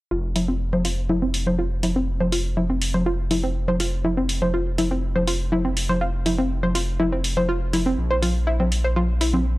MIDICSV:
0, 0, Header, 1, 4, 480
1, 0, Start_track
1, 0, Tempo, 491803
1, 108, Time_signature, 4, 2, 24, 8
1, 9352, End_track
2, 0, Start_track
2, 0, Title_t, "Synth pluck"
2, 0, Program_c, 0, 84
2, 109, Note_on_c, 0, 65, 76
2, 227, Note_off_c, 0, 65, 0
2, 348, Note_on_c, 0, 64, 74
2, 466, Note_off_c, 0, 64, 0
2, 472, Note_on_c, 0, 60, 75
2, 564, Note_off_c, 0, 60, 0
2, 712, Note_on_c, 0, 72, 72
2, 805, Note_off_c, 0, 72, 0
2, 828, Note_on_c, 0, 65, 73
2, 946, Note_off_c, 0, 65, 0
2, 1069, Note_on_c, 0, 64, 81
2, 1187, Note_off_c, 0, 64, 0
2, 1193, Note_on_c, 0, 60, 72
2, 1285, Note_off_c, 0, 60, 0
2, 1434, Note_on_c, 0, 72, 75
2, 1525, Note_off_c, 0, 72, 0
2, 1548, Note_on_c, 0, 65, 80
2, 1666, Note_off_c, 0, 65, 0
2, 1789, Note_on_c, 0, 64, 73
2, 1907, Note_off_c, 0, 64, 0
2, 1912, Note_on_c, 0, 60, 74
2, 2005, Note_off_c, 0, 60, 0
2, 2152, Note_on_c, 0, 72, 73
2, 2245, Note_off_c, 0, 72, 0
2, 2268, Note_on_c, 0, 65, 75
2, 2386, Note_off_c, 0, 65, 0
2, 2508, Note_on_c, 0, 64, 77
2, 2626, Note_off_c, 0, 64, 0
2, 2632, Note_on_c, 0, 60, 75
2, 2725, Note_off_c, 0, 60, 0
2, 2872, Note_on_c, 0, 72, 71
2, 2964, Note_off_c, 0, 72, 0
2, 2988, Note_on_c, 0, 65, 78
2, 3106, Note_off_c, 0, 65, 0
2, 3229, Note_on_c, 0, 64, 72
2, 3347, Note_off_c, 0, 64, 0
2, 3353, Note_on_c, 0, 60, 72
2, 3445, Note_off_c, 0, 60, 0
2, 3593, Note_on_c, 0, 72, 76
2, 3685, Note_off_c, 0, 72, 0
2, 3709, Note_on_c, 0, 65, 73
2, 3827, Note_off_c, 0, 65, 0
2, 3949, Note_on_c, 0, 64, 79
2, 4067, Note_off_c, 0, 64, 0
2, 4073, Note_on_c, 0, 60, 74
2, 4165, Note_off_c, 0, 60, 0
2, 4313, Note_on_c, 0, 72, 75
2, 4405, Note_off_c, 0, 72, 0
2, 4429, Note_on_c, 0, 65, 79
2, 4547, Note_off_c, 0, 65, 0
2, 4669, Note_on_c, 0, 64, 73
2, 4787, Note_off_c, 0, 64, 0
2, 4793, Note_on_c, 0, 60, 69
2, 4885, Note_off_c, 0, 60, 0
2, 5032, Note_on_c, 0, 72, 70
2, 5125, Note_off_c, 0, 72, 0
2, 5149, Note_on_c, 0, 65, 73
2, 5267, Note_off_c, 0, 65, 0
2, 5388, Note_on_c, 0, 64, 81
2, 5506, Note_off_c, 0, 64, 0
2, 5512, Note_on_c, 0, 60, 73
2, 5605, Note_off_c, 0, 60, 0
2, 5752, Note_on_c, 0, 72, 75
2, 5845, Note_off_c, 0, 72, 0
2, 5867, Note_on_c, 0, 65, 78
2, 5986, Note_off_c, 0, 65, 0
2, 6108, Note_on_c, 0, 64, 75
2, 6226, Note_off_c, 0, 64, 0
2, 6232, Note_on_c, 0, 60, 73
2, 6324, Note_off_c, 0, 60, 0
2, 6472, Note_on_c, 0, 72, 69
2, 6565, Note_off_c, 0, 72, 0
2, 6588, Note_on_c, 0, 65, 74
2, 6706, Note_off_c, 0, 65, 0
2, 6828, Note_on_c, 0, 64, 80
2, 6946, Note_off_c, 0, 64, 0
2, 6953, Note_on_c, 0, 60, 71
2, 7045, Note_off_c, 0, 60, 0
2, 7192, Note_on_c, 0, 72, 75
2, 7285, Note_off_c, 0, 72, 0
2, 7307, Note_on_c, 0, 65, 80
2, 7426, Note_off_c, 0, 65, 0
2, 7548, Note_on_c, 0, 64, 74
2, 7666, Note_off_c, 0, 64, 0
2, 7672, Note_on_c, 0, 60, 74
2, 7764, Note_off_c, 0, 60, 0
2, 7911, Note_on_c, 0, 72, 76
2, 8004, Note_off_c, 0, 72, 0
2, 8027, Note_on_c, 0, 65, 73
2, 8146, Note_off_c, 0, 65, 0
2, 8267, Note_on_c, 0, 64, 79
2, 8386, Note_off_c, 0, 64, 0
2, 8392, Note_on_c, 0, 60, 72
2, 8484, Note_off_c, 0, 60, 0
2, 8632, Note_on_c, 0, 72, 71
2, 8725, Note_off_c, 0, 72, 0
2, 8748, Note_on_c, 0, 65, 81
2, 8866, Note_off_c, 0, 65, 0
2, 8988, Note_on_c, 0, 64, 74
2, 9106, Note_off_c, 0, 64, 0
2, 9112, Note_on_c, 0, 60, 76
2, 9204, Note_off_c, 0, 60, 0
2, 9352, End_track
3, 0, Start_track
3, 0, Title_t, "Analog synth bass"
3, 0, Program_c, 1, 38
3, 109, Note_on_c, 1, 29, 85
3, 7765, Note_off_c, 1, 29, 0
3, 7789, Note_on_c, 1, 34, 82
3, 9352, Note_off_c, 1, 34, 0
3, 9352, End_track
4, 0, Start_track
4, 0, Title_t, "Drums"
4, 348, Note_on_c, 9, 46, 97
4, 348, Note_on_c, 9, 64, 87
4, 446, Note_off_c, 9, 46, 0
4, 446, Note_off_c, 9, 64, 0
4, 713, Note_on_c, 9, 64, 90
4, 810, Note_off_c, 9, 64, 0
4, 828, Note_on_c, 9, 46, 94
4, 925, Note_off_c, 9, 46, 0
4, 1068, Note_on_c, 9, 64, 87
4, 1166, Note_off_c, 9, 64, 0
4, 1308, Note_on_c, 9, 46, 94
4, 1405, Note_off_c, 9, 46, 0
4, 1432, Note_on_c, 9, 64, 86
4, 1530, Note_off_c, 9, 64, 0
4, 1788, Note_on_c, 9, 46, 97
4, 1788, Note_on_c, 9, 64, 87
4, 1885, Note_off_c, 9, 46, 0
4, 1885, Note_off_c, 9, 64, 0
4, 2152, Note_on_c, 9, 64, 84
4, 2250, Note_off_c, 9, 64, 0
4, 2268, Note_on_c, 9, 46, 100
4, 2366, Note_off_c, 9, 46, 0
4, 2508, Note_on_c, 9, 64, 83
4, 2606, Note_off_c, 9, 64, 0
4, 2748, Note_on_c, 9, 46, 98
4, 2846, Note_off_c, 9, 46, 0
4, 2873, Note_on_c, 9, 64, 86
4, 2971, Note_off_c, 9, 64, 0
4, 3228, Note_on_c, 9, 46, 101
4, 3228, Note_on_c, 9, 64, 81
4, 3326, Note_off_c, 9, 46, 0
4, 3326, Note_off_c, 9, 64, 0
4, 3593, Note_on_c, 9, 64, 88
4, 3690, Note_off_c, 9, 64, 0
4, 3708, Note_on_c, 9, 46, 101
4, 3806, Note_off_c, 9, 46, 0
4, 3948, Note_on_c, 9, 64, 78
4, 4045, Note_off_c, 9, 64, 0
4, 4188, Note_on_c, 9, 46, 104
4, 4286, Note_off_c, 9, 46, 0
4, 4313, Note_on_c, 9, 64, 78
4, 4410, Note_off_c, 9, 64, 0
4, 4669, Note_on_c, 9, 46, 101
4, 4669, Note_on_c, 9, 64, 82
4, 4766, Note_off_c, 9, 46, 0
4, 4766, Note_off_c, 9, 64, 0
4, 5033, Note_on_c, 9, 64, 81
4, 5130, Note_off_c, 9, 64, 0
4, 5148, Note_on_c, 9, 46, 100
4, 5246, Note_off_c, 9, 46, 0
4, 5389, Note_on_c, 9, 64, 87
4, 5486, Note_off_c, 9, 64, 0
4, 5629, Note_on_c, 9, 46, 103
4, 5727, Note_off_c, 9, 46, 0
4, 5753, Note_on_c, 9, 64, 81
4, 5851, Note_off_c, 9, 64, 0
4, 6109, Note_on_c, 9, 46, 101
4, 6109, Note_on_c, 9, 64, 80
4, 6206, Note_off_c, 9, 46, 0
4, 6206, Note_off_c, 9, 64, 0
4, 6474, Note_on_c, 9, 64, 82
4, 6571, Note_off_c, 9, 64, 0
4, 6589, Note_on_c, 9, 46, 98
4, 6687, Note_off_c, 9, 46, 0
4, 6829, Note_on_c, 9, 64, 82
4, 6926, Note_off_c, 9, 64, 0
4, 7069, Note_on_c, 9, 46, 97
4, 7166, Note_off_c, 9, 46, 0
4, 7193, Note_on_c, 9, 64, 82
4, 7290, Note_off_c, 9, 64, 0
4, 7548, Note_on_c, 9, 46, 103
4, 7548, Note_on_c, 9, 64, 82
4, 7646, Note_off_c, 9, 46, 0
4, 7646, Note_off_c, 9, 64, 0
4, 8028, Note_on_c, 9, 46, 98
4, 8028, Note_on_c, 9, 64, 80
4, 8126, Note_off_c, 9, 46, 0
4, 8126, Note_off_c, 9, 64, 0
4, 8393, Note_on_c, 9, 64, 86
4, 8491, Note_off_c, 9, 64, 0
4, 8509, Note_on_c, 9, 46, 95
4, 8606, Note_off_c, 9, 46, 0
4, 8748, Note_on_c, 9, 64, 84
4, 8846, Note_off_c, 9, 64, 0
4, 8989, Note_on_c, 9, 46, 96
4, 9086, Note_off_c, 9, 46, 0
4, 9112, Note_on_c, 9, 64, 82
4, 9210, Note_off_c, 9, 64, 0
4, 9352, End_track
0, 0, End_of_file